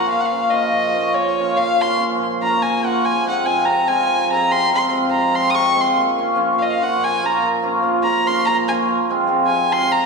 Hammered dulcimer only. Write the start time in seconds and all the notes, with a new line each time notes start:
Already playing: A#2 F3
0.12 A#2
0.32 F3 A#3 C#4 F4
0.51 F3 A#3 C#4 F4
0.72 A#2
0.95 F3 A#3 C#4 F4
1.14 A#2
1.39 F3 A#3 C#4 F4
1.58 A#2
1.79 F3 A#3 C#4 F4
1.98 F3 A#3 C#4 F4
2.17 A#2
2.41 F3 A#3 C#4 F4
2.60 A#2
2.82 F3 A#3 C#4 F4
3.03 F3
3.24 F3 G#3 C4 F4
3.44 F3 G#3 C4 F4
3.65 C3
3.87 F3 G#3 C4 F4
4.08 F3
4.31 F3 G#3 C4 F4
4.51 C3
4.72 F3 G#3 C4 F4
4.90 F3 G#3 C4 F4
5.09 F3
5.32 F3 G#3 C4 F4
5.53 C3
5.76 F3 G#3 C4 F4
5.96 A#2
6.16 F3 A#3 C#4 F4
6.36 F3 A#3 C#4 F4
6.55 A#2
6.78 F3 A#3 C#4 F4
6.99 A#2
7.21 F3 A#3 C#4 F4
7.42 A#2
7.62 F3 A#3 C#4 F4
7.82 F3 A#3 C#4 F4
8.02 A#2
8.25 F3 A#3 C#4 F4
8.46 A#2
8.69 F3 A#3 C#4 F4
8.89 F3
9.09 F3 G#3 C4 F4
9.27 F3 G#3 C4 F4
9.48 C3
9.71 F3 G#3 C4 F4
9.90 F3